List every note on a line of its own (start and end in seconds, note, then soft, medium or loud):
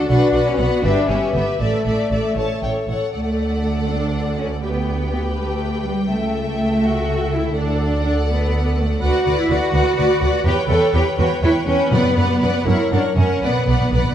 0.08 0.17 B1 medium
0.08 0.46 D4 medium
0.08 0.31 F#4 medium
0.08 0.80 F#4 medium
0.08 0.34 B4 medium
0.08 0.80 D5 medium
0.08 0.31 F#5 medium
0.32 0.41 B1 medium
0.32 0.57 F#4 medium
0.32 0.59 B4 soft
0.32 0.55 F#5 soft
0.47 0.59 C#4 medium
0.57 0.66 B1 medium
0.57 0.84 B3 medium
0.57 0.83 F#4 medium
0.57 0.83 B4 soft
0.57 0.83 F#5 medium
0.83 0.91 G1 medium
0.83 1.09 D4 medium
0.83 1.08 G4 medium
0.83 1.07 B4 soft
0.83 1.61 B4 medium
0.83 1.06 E5 medium
0.83 1.60 E5 medium
1.08 1.16 G1 medium
1.08 1.35 C#4 medium
1.08 1.33 G4 soft
1.08 1.34 B4 soft
1.08 1.32 E5 soft
1.33 1.42 G1 soft
1.33 1.42 B3 medium
1.33 1.60 G4 soft
1.33 1.60 B4 soft
1.33 1.58 E5 soft
1.59 1.68 A1 medium
1.59 2.36 A3 medium
1.59 1.85 A4 medium
1.59 1.85 D5 soft
1.59 2.37 D5 medium
1.59 1.85 E5 soft
1.59 2.36 E5 medium
1.86 1.94 A1 soft
1.86 2.10 A4 soft
1.86 2.11 D5 soft
1.86 2.10 E5 soft
2.11 2.19 A1 soft
2.11 2.35 A4 soft
2.11 2.37 D5 soft
2.11 2.37 E5 soft
2.36 2.44 A1 medium
2.36 2.61 A4 soft
2.36 2.61 C#5 soft
2.36 2.88 C#5 soft
2.36 2.88 E5 soft
2.36 2.61 A5 soft
2.62 2.70 A1 soft
2.62 2.87 A4 soft
2.62 2.87 C#5 soft
2.62 2.71 G5 soft
2.88 2.96 A1 soft
2.88 3.13 A4 soft
2.88 3.14 C#5 soft
2.88 3.13 F#5 soft
3.14 6.05 D2 soft
3.14 3.86 A3 medium
3.14 4.60 A4 medium
3.14 4.59 D5 soft
3.14 4.59 F#5 soft
3.90 4.39 D4 soft
4.39 4.47 C#4 medium
4.63 5.11 B3 medium
4.63 6.06 G4 medium
4.63 6.05 B4 soft
4.63 7.52 G5 soft
5.12 5.20 B3 medium
5.37 5.85 A3 medium
5.85 6.10 G3 medium
6.09 7.53 C#2 soft
6.09 6.84 A3 medium
6.09 8.98 A4 medium
6.09 7.52 E5 soft
6.84 7.32 F#4 medium
7.32 7.56 E4 medium
7.55 8.98 D2 medium
7.55 8.03 D4 medium
7.55 8.98 D5 soft
7.55 8.97 F#5 medium
8.04 8.12 D4 medium
8.29 8.76 B3 medium
8.78 9.02 A3 medium
9.01 9.10 D2 medium
9.01 9.37 F#4 medium
9.01 9.25 B4 medium
9.01 9.24 D5 soft
9.01 9.24 F#5 medium
9.25 9.34 D2 medium
9.25 9.48 B4 medium
9.25 9.49 D5 medium
9.25 9.49 F#5 medium
9.39 9.50 E4 medium
9.50 9.58 D2 medium
9.50 10.46 F#4 medium
9.50 9.72 B4 medium
9.50 9.73 D5 soft
9.50 9.72 F#5 medium
9.73 9.82 D2 medium
9.73 9.96 B4 soft
9.73 9.96 D5 medium
9.73 9.96 F#5 medium
9.97 10.06 D2 medium
9.97 10.21 B4 medium
9.97 10.21 D5 medium
9.97 10.20 F#5 soft
10.21 10.29 D2 medium
10.21 10.44 B4 medium
10.21 10.46 D5 medium
10.21 10.45 F#5 medium
10.45 10.53 E2 medium
10.45 10.54 G4 medium
10.45 10.68 B4 medium
10.45 10.68 C#5 medium
10.45 10.67 G5 medium
10.68 10.76 E2 medium
10.68 10.94 A4 medium
10.68 10.92 B4 medium
10.68 10.93 C#5 medium
10.68 10.91 G5 medium
10.93 11.01 E2 medium
10.93 11.03 G4 medium
10.93 11.17 B4 medium
10.93 11.17 C#5 soft
10.93 11.16 G5 medium
11.17 11.26 E2 medium
11.17 11.28 F#4 medium
11.17 11.42 B4 medium
11.17 11.41 C#5 medium
11.17 11.42 G5 medium
11.42 11.50 E2 medium
11.42 11.52 E4 medium
11.42 11.67 B4 soft
11.42 11.66 C#5 medium
11.42 11.66 G5 soft
11.67 11.75 E2 medium
11.67 11.92 C#4 medium
11.67 11.91 B4 medium
11.67 11.91 C#5 medium
11.67 11.92 G5 medium
11.91 12.62 F#2 medium
11.91 12.00 F#2 medium
11.91 12.67 B3 medium
11.91 12.16 B4 medium
11.91 12.15 D5 medium
11.91 12.16 F#5 medium
12.16 12.24 F#2 medium
12.16 12.41 B4 medium
12.16 12.40 D5 medium
12.16 12.40 F#5 medium
12.41 12.49 F#2 medium
12.41 12.66 B4 medium
12.41 12.66 D5 soft
12.41 12.66 F#5 medium
12.66 12.74 F#2 medium
12.66 12.92 E4 medium
12.66 12.90 A#4 medium
12.66 12.91 C#5 soft
12.66 12.90 F#5 medium
12.91 12.99 F#2 medium
12.91 13.00 D4 medium
12.91 13.15 A#4 soft
12.91 13.16 C#5 soft
12.91 13.16 F#5 soft
13.16 13.24 F#2 medium
13.16 13.42 C#4 medium
13.16 13.42 A#4 medium
13.16 13.42 C#5 soft
13.16 13.42 F#5 soft
13.42 13.50 B1 medium
13.42 13.49 B2 soft
13.42 14.15 B3 medium
13.42 13.67 B4 medium
13.42 13.67 D5 soft
13.42 13.67 F#5 medium
13.50 13.57 B2 soft
13.58 13.64 B2 soft
13.66 13.76 B1 soft
13.66 13.72 B2 soft
13.66 13.92 B4 soft
13.66 13.93 D5 soft
13.66 13.92 F#5 soft
13.73 13.80 B2 soft
13.81 13.87 B2 soft
13.89 14.01 B1 medium
13.89 13.96 B2 soft
13.93 14.03 B2 soft
13.93 14.15 B4 medium
13.93 14.15 D5 soft
13.93 14.15 F#5 medium
14.04 14.11 B2 soft